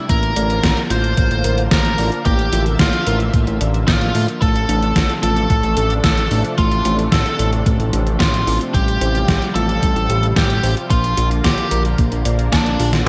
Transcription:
0.09 A1 D3 F3 A#3 F4 A#4, kick, closed hi-hat
0.23 closed hi-hat
0.36 A1 D5, closed hi-hat
0.50 closed hi-hat
0.63 A1 A#3, kick, snare, closed hi-hat
0.77 closed hi-hat
0.90 A1 F4 C5, closed hi-hat
1.04 closed hi-hat
1.17 A1 A#3, kick, closed hi-hat
1.31 A1, closed hi-hat
1.44 A1 A#4, closed hi-hat
1.58 closed hi-hat
1.71 A1 A#3 A#4, kick, snare, closed hi-hat
1.85 closed hi-hat
1.98 A1 D5, open hi-hat
2.12 closed hi-hat
2.25 A1 A#3 G4 E5, kick, closed hi-hat
2.39 closed hi-hat
2.53 A1 F4, closed hi-hat
2.66 closed hi-hat
2.79 A1 A#3 F4, kick, snare, closed hi-hat
2.93 closed hi-hat
3.06 A1 A#4, closed hi-hat
3.20 closed hi-hat
3.34 A1 A#3, kick, closed hi-hat
3.47 A1, closed hi-hat
3.61 A1 D5, closed hi-hat
3.74 closed hi-hat
3.88 A1 A#3 F4, kick, snare, closed hi-hat
4.01 closed hi-hat
4.15 A2 F4, open hi-hat
4.28 closed hi-hat
4.42 A1 C3 A3 D4 A4, kick, closed hi-hat
4.56 closed hi-hat
4.69 A1 D4, closed hi-hat
4.83 closed hi-hat
4.96 A1 A3, kick, snare, closed hi-hat
5.09 closed hi-hat
5.23 A1 F4 A4, closed hi-hat
5.36 closed hi-hat
5.50 A1 A3, kick, closed hi-hat
5.63 A1, closed hi-hat
5.77 A1 A4, closed hi-hat
5.90 closed hi-hat
6.04 A1 A3 A4, kick, snare, closed hi-hat
6.17 closed hi-hat
6.31 A1 D4, open hi-hat
6.45 closed hi-hat
6.58 A1 A3 F4, kick, closed hi-hat
6.71 closed hi-hat
6.85 A1 F4, closed hi-hat
6.99 closed hi-hat
7.12 A1 A3 A4, kick, snare, closed hi-hat
7.26 closed hi-hat
7.39 A1 A4, closed hi-hat
7.53 closed hi-hat
7.66 A1 A3, kick, closed hi-hat
7.79 A1, closed hi-hat
7.93 A1 D4, closed hi-hat
8.07 closed hi-hat
8.20 A1 A3 F4, kick, snare, closed hi-hat
8.34 closed hi-hat
8.47 A1 F4, open hi-hat
8.61 closed hi-hat
8.74 A1 G3 F4 G4, kick, closed hi-hat
8.88 closed hi-hat
9.01 A1 C5, closed hi-hat
9.15 closed hi-hat
9.28 A1 G3, kick, snare, closed hi-hat
9.42 closed hi-hat
9.55 A1 F4 A4, closed hi-hat
9.69 closed hi-hat
9.82 A1 G3, kick, closed hi-hat
9.96 A1, closed hi-hat
10.09 A1 G4, closed hi-hat
10.23 closed hi-hat
10.36 A1 G3 G4, kick, snare, closed hi-hat
10.50 closed hi-hat
10.63 A1 C5, open hi-hat
10.77 closed hi-hat
10.90 A#1 D3 A#3 F4, kick, closed hi-hat
11.04 closed hi-hat
11.17 A#1 F4, closed hi-hat
11.31 closed hi-hat
11.44 A#1 A#3 G4, kick, snare, closed hi-hat
11.58 closed hi-hat
11.71 A#1 A#4, closed hi-hat
11.85 closed hi-hat
11.98 A#1 A#3, kick, closed hi-hat
12.12 A#1, closed hi-hat
12.25 A#1 D5, closed hi-hat
12.39 closed hi-hat
12.53 A#1 A#3 D4, kick, snare, closed hi-hat
12.66 closed hi-hat
12.80 A#1 F4, open hi-hat
12.93 snare, closed hi-hat

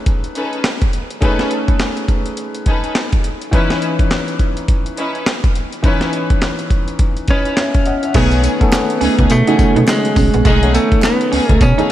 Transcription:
Already playing: A3 C#4 D#4 G#4 B4
0.06 kick, closed hi-hat
0.24 closed hi-hat
0.35 C#4 D#4 G#4 A4 B4, closed hi-hat
0.53 closed hi-hat
0.64 snare, clap, closed hi-hat
0.81 kick, closed hi-hat
0.93 closed hi-hat
1.10 closed hi-hat
1.21 A3 C#4 D#4 G#4 A4 B4, kick, closed hi-hat
1.39 snare, closed hi-hat
1.51 closed hi-hat
1.68 kick, closed hi-hat
1.79 snare, clap, closed hi-hat
1.97 closed hi-hat
2.08 kick, closed hi-hat
2.26 closed hi-hat
2.37 closed hi-hat
2.55 closed hi-hat
2.66 C#4 D#4 G#4 A4 B4, kick, closed hi-hat
2.84 closed hi-hat
2.95 snare, clap, closed hi-hat
3.12 kick, closed hi-hat
3.24 closed hi-hat
3.42 closed hi-hat
3.51 E3 C#4 D#4 E4 B4, kick, closed hi-hat
3.70 snare, closed hi-hat
3.82 closed hi-hat
3.99 kick, closed hi-hat
4.11 snare, clap, closed hi-hat
4.28 closed hi-hat
4.39 kick, closed hi-hat
4.57 closed hi-hat
4.68 kick, closed hi-hat
4.86 closed hi-hat
4.97 C#4 D#4 E4 B4, closed hi-hat
5.15 closed hi-hat
5.26 snare, clap, closed hi-hat
5.44 kick, closed hi-hat
5.55 closed hi-hat
5.72 closed hi-hat
5.83 E3 C#4 D#4 E4 B4, kick, closed hi-hat
6.01 snare, closed hi-hat
6.13 closed hi-hat
6.30 kick, closed hi-hat
6.41 snare, clap, closed hi-hat
6.59 closed hi-hat
6.70 kick, closed hi-hat
6.88 closed hi-hat
6.99 kick, closed hi-hat
7.17 closed hi-hat
7.28 C#4 D#4 E4 B4, kick, closed hi-hat
7.45 closed hi-hat
7.57 C#5 E5, snare, clap, closed hi-hat
7.74 kick, closed hi-hat
7.86 D#5 F#5, closed hi-hat
8.03 C#5 E5, closed hi-hat
8.14 B1 D#3 A3 B3 C#4 D#4 G#4, kick, closed hi-hat, crash, tambourine
8.32 closed hi-hat
8.44 B3, closed hi-hat, tambourine
8.60 D#3 A3 B3 C#4 A4, muted clean electric guitar stroke, kick, closed hi-hat
8.72 snare, clap, closed hi-hat, tambourine
8.90 closed hi-hat
9.01 C#2 A3 C#4 D#4 G#4, open hi-hat
9.19 C#2, kick, closed hi-hat
9.30 B2 A3, closed hi-hat, tambourine
9.47 C#3 F#3 A3 B3 C#4 D#4 G#4, closed hi-hat
9.53 D#3
9.59 B2, muted clean electric guitar stroke, kick, closed hi-hat, tambourine
9.76 B2 D#4, closed hi-hat
9.87 G#3, muted clean electric guitar stroke, snare, clap, closed hi-hat, tambourine
10.05 closed hi-hat
10.16 B1 C#4, kick, open hi-hat, tambourine
10.34 A#1 B3, closed hi-hat
10.45 B1 G#3 A3 C#4 D#4 G#4, kick, closed hi-hat, tambourine
10.62 D#3 A3 B3 C#4 D#4, closed hi-hat
10.74 A3 B3, closed hi-hat, tambourine
10.92 muted clean electric guitar stroke, kick, closed hi-hat
11.03 B3, snare, clap, closed hi-hat, tambourine
11.21 closed hi-hat
11.32 C#2 A3 C#4 D#4 G#4, open hi-hat
11.49 C#2 A3, kick, closed hi-hat
11.61 B2 C#4, kick, closed hi-hat, tambourine
11.78 D#3 A3 B3 C#4 D#4 G#4, closed hi-hat

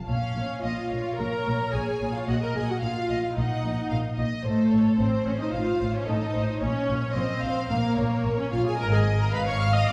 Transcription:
0.07 A#1 A#2 C#4 C#5 F5
0.36 A#1 A#2
0.61 A#1 A#2 F4 D#5 F5
0.92 A#1 A#2 C#5
1.18 A#1 A#2 A#4 A#5
1.47 A#1 A#2
1.73 A#1 A#2 G#4 G#5
2.01 A#1 A#2
2.15 F4 F5
2.28 A#1 A#2 F#4 D#5 F#5
2.43 A#4 A#5
2.55 A#1 A#2 G#4 G#5
2.69 F#4 F#5
2.82 A#1 A#2 F4 F5
3.10 A#1 A#2 D#5
3.36 A#1 A#2 D#4 D#5 F#5
3.65 A#1 A#2
3.89 A#1 A#2 F5
4.18 A#1 A#2 D#5
4.44 A1 A2 A3 A4 C5
4.71 A1 A2 C#5
4.97 A1 A2 C4 C5
5.26 A1 A2 C#4 C#5
5.39 D#4 D#5
5.53 A1 A2 F4 F5
5.80 A1 A2
5.93 C#4 C#5
6.05 A1 A2 D#4 A4 D#5
6.34 A1 A2 C5
6.59 A#1 A#2 C#4 C#5
6.89 A#1 A#2
7.15 A#1 A#2 C4 C5 D#5
7.41 A#1 A#2 F5
7.69 A#1 A#2 A#3 A#4 F5
7.94 A#1 A#2 C#5
8.24 A#1 A#2
8.38 C#4 C#5
8.51 A#1 A#2 F4 F5
8.66 G#4 G#5
8.76 G#1 G#2 A#4 D#5
8.80 A#5
8.93 G#4 G#5
9.20 A#4 A#5
9.31 G#1 G#2 B4 F5 B5
9.47 C#5 C#6
9.60 F5 F6
9.74 D#5 D#6
9.86 A#1 A#2 D5 D6

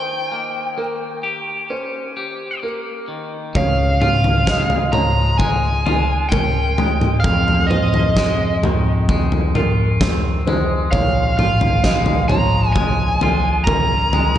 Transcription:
Already playing: D#3 C5 G5
0.31 A#3
0.78 A#3 A#4
1.23 G4
1.70 C#4 C5
2.17 G4
2.63 A#3 A#4
3.08 D#3
3.55 C#2 C#3 C#5 F5, kick, floor tom
4.01 F4 F5, mid tom
4.24 floor tom
4.47 G#3 D#5, kick, snare
4.70 floor tom
4.92 F3 C#5 A#5, floor tom, mid tom
5.38 G#3 G#5, kick, floor tom
5.86 F4, floor tom
6.29 C#4 A#4 G5, kick, floor tom
6.78 G#3, floor tom
7.01 mid tom
7.20 F5
7.24 F2, kick, floor tom
7.48 floor tom
7.67 F4 C5 D#5
7.71 mid tom
7.94 floor tom
8.16 G#3 D#5, kick, snare
8.63 D#3, floor tom, mid tom
9.09 G#3, kick, floor tom
9.32 floor tom
9.55 F4 A#4, floor tom, mid tom
10.01 C4, kick, snare, floor tom
10.47 G#3 C5, floor tom
10.91 A#1 A#2 C#5 F5, kick, floor tom
11.38 F4 F5, mid tom
11.61 floor tom
11.84 G#3 D#5, kick, snare
12.06 floor tom
12.28 F3 C#5 A#5, floor tom, mid tom
12.73 G#3 G#5, kick, floor tom
13.21 F4, floor tom
13.64 C#4 A#4 A#5, kick, floor tom
14.13 G#3, floor tom

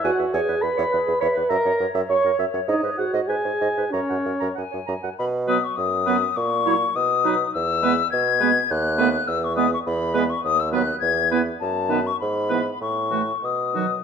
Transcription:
Already playing: C#5
0.04 E2 F#4 F#5 G#5
0.19 E2 E5
0.33 E2 G#4 B4 C#5 G#5
0.48 E2 B4
0.62 E2 G#4 B4 B5
0.77 E2 C#5
0.92 E2 G#4 B4
1.06 E2 G#4
1.20 E2 B4 C#5 E5 B5
1.36 E2 B4
1.49 F#2 A#4 D#5 E5 A#5
1.65 F#2 C#5
1.80 F#2 A#4 C#5
1.94 F#2 E5
2.09 F#2 C#5 C#6
2.24 F#2 A#4
2.39 F#2 E5
2.54 F#2 C#5
2.68 G#2 D#4 D#5
2.83 G#2 B4
2.98 G#2 F#4 G#4 F#5
3.13 G#2 D#5
3.28 G#2 G#4 B4 G#5
3.45 G#2 G#4
3.61 G#2 D#5
3.77 G#2 B4
3.91 F#2 C#4 A#4 C#5 A#5
4.09 F#2 F#5
4.25 F#2 C#5
4.40 F#2 A#5
4.55 F#2 F#5 G#5
4.71 F#2 C#5
4.87 F#2 A#5
5.03 F#2 F#5
5.18 B2 B5
5.47 F#3 B3 B4 D#6
5.64 C#6
5.76 F#2 D#6
6.06 F#3 B3 B4
6.36 A#2 C#6
6.66 F#3 E4 C#5
6.96 B2 D#6
7.25 F#3 D#4 B4
7.54 E2 E6
7.83 G#3 B3 B4
8.11 B2 G#6
8.40 G#3 B3 B4
8.70 D#2 F#6
8.98 A3 B3 B4
9.28 E2 E6
9.44 C#6
9.56 G#3 B3 B4 D#6
9.74 C#6
9.86 E2 B5
10.14 G#3 B3 B4
10.30 C#6
10.44 D#2 D#6
10.60 E6
10.72 F#3 B3 B4 F#6
11.00 E2 G#6
11.31 E3 B3 B4
11.60 F#2 A5
11.89 D#3 B3 B4
12.07 C#6
12.20 G#2 B5
12.50 E3 B3 B4
12.81 A2 C#6
13.11 E3 A3 F#4
13.43 B2 D#6
13.74 D#3 F#3 F#4

